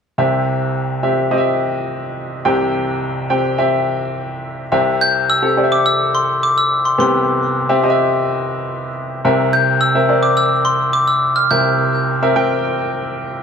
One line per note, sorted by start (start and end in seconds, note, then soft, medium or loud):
0.18 2.41 C2 soft
0.18 2.41 C3 soft
0.18 0.97 C4 medium
0.18 0.97 G4 medium
0.18 0.97 E5 medium
1.03 1.29 C4 medium
1.03 1.29 G4 soft
1.03 1.30 E5 medium
1.31 2.36 C4 medium
1.31 2.36 G4 medium
1.31 1.38 D#5 medium
1.38 2.40 E5 medium
2.45 4.68 C2 medium
2.45 4.68 C3 medium
2.45 3.24 C4 medium
2.45 3.24 G4 medium
2.45 3.24 G5 medium
3.30 3.56 C4 medium
3.30 3.56 G4 medium
3.30 3.56 G5 medium
3.58 4.63 C4 medium
3.58 4.63 G4 medium
3.58 4.63 E5 medium
4.72 6.94 C2 medium
4.72 6.94 C3 medium
4.72 5.37 C4 medium
4.72 5.37 G4 medium
4.72 5.37 E5 medium
5.01 5.30 G6 medium
5.30 5.73 E6 medium
5.42 5.56 C4 medium
5.42 5.56 G4 soft
5.42 5.56 A4 medium
5.57 6.62 C4 medium
5.57 6.62 G4 soft
5.57 5.64 D5 soft
5.64 6.65 E5 medium
5.72 5.86 D6 medium
5.86 6.15 E6 medium
6.15 6.43 C6 medium
6.43 6.57 D6 medium
6.58 6.86 E6 medium
6.85 6.98 C6 medium
6.98 9.21 C2 soft
6.98 9.21 C3 soft
6.98 7.64 B3 medium
6.98 7.64 C4 medium
6.98 7.64 G4 soft
6.98 7.52 C6 medium
7.69 7.82 C4 medium
7.69 7.82 G4 medium
7.69 7.82 E5 medium
7.83 8.88 C4 medium
7.83 8.88 G4 medium
7.83 7.90 D#5 medium
7.90 8.91 E5 medium
9.25 11.47 C2 medium
9.25 11.47 C3 medium
9.25 9.90 C4 medium
9.25 9.90 A#4 medium
9.25 9.90 E5 medium
9.53 9.80 G6 medium
9.81 10.21 E6 medium
9.95 10.07 C4 medium
9.95 10.07 A#4 medium
9.95 10.08 E5 medium
10.09 11.14 C4 medium
10.09 11.14 A#4 medium
10.09 11.14 D5 medium
10.23 10.38 D6 medium
10.37 10.64 E6 medium
10.65 10.95 C6 medium
10.93 11.07 D6 medium
11.08 11.37 E6 medium
11.36 11.50 F6 medium
11.51 13.43 C2 soft
11.51 13.43 C3 soft
11.51 12.17 C4 medium
11.51 12.17 A#4 medium
11.51 12.17 E5 medium
11.51 12.04 G6 medium
12.22 12.35 C4 medium
12.22 12.34 A#4 medium
12.22 12.35 E5 medium
12.36 13.41 C4 medium
12.36 13.41 A#4 medium
12.36 13.41 G5 medium